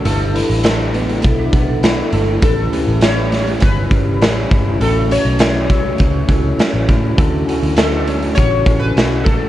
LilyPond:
<<
  \new Staff \with { instrumentName = "Synth keys" } { \time 4/4 \key d \major \tempo 4 = 101 a'4 r2. | a'4 cis''4 b'2 | a'8 cis''2. r8 | r4 a'4 cis''8. b'8. a'8 | }
  \new Staff \with { instrumentName = "Vibraphone" } { \time 4/4 \key d \major r2 a'16 <d' b'>8 a'4~ a'16 | r1 | r1 | r1 | }
  \new Staff \with { instrumentName = "Tine electric piano" } { \time 4/4 \key d \major <d' e' a' b'>8 <d' e' a' b'>4. r8 <d' e' a' b'>4 r8 | <cis' e' g' b'>8 <cis' e' g' b'>4. r8 <cis' e' g' cis''>4 r8 | <cis' e' fis' a'>8 <cis' e' fis' b'>4. r8 <cis' e' fis' a'>4 r8 | <cis' e' fis' a'>8 <cis' e' fis' a'>4. r8 <cis' e' fis' a'>4 r8 | }
  \new Staff \with { instrumentName = "Clean electric guitar" } { \time 4/4 \key d \major <g a'>8 e'8 a'8 b8 e'8 b8 e'8 a'8 | <a, e'>8 cis'8 e'8 g8 cis'8 g8 cis'8 e'8 | <a, e'>8 cis'8 e'8 fis8 cis'8 fis8 cis'8 e'8 | <d a'>8 fis'8 a'8 cis'8 fis'8 cis'8 fis'8 a'8 | }
  \new Staff \with { instrumentName = "Picked electric bass" } { \clef bass \time 4/4 \key d \major g,,8. a,,4~ a,,16 b,,8 b,,4 g,,8 | a,,8 r16 a,,4~ a,,16 g,,8 g,,8 a,,8 g,,8 | a,,8. b,,4~ b,,16 cis,8 cis,8 r16 a,,16 a,8 | d,8 r16 d,4~ d,16 a,,8 a,,8 b,,8 a,,8 | }
  \new DrumStaff \with { instrumentName = "Drums" } \drummode { \time 4/4 hh8 hh16 hh16 <hh sn>8 hh16 hh16 <hh bd>8 <hh bd>8 <hh sn>8 hh8 | <hh bd>8 hh8 <hh sn>8 <hh sn>16 hh16 <hh bd>8 <hh bd>8 <hh sn>8 <hh bd>8 | hh8 hh8 <hh sn>8 <hh bd>8 <hh bd>8 <hh bd>8 <hh sn>8 <hh bd>8 | <hh bd>8 hh16 hh16 <hh sn>8 hh16 hh16 <hh bd>8 <hh bd>8 <hh sn>8 <hh bd>8 | }
>>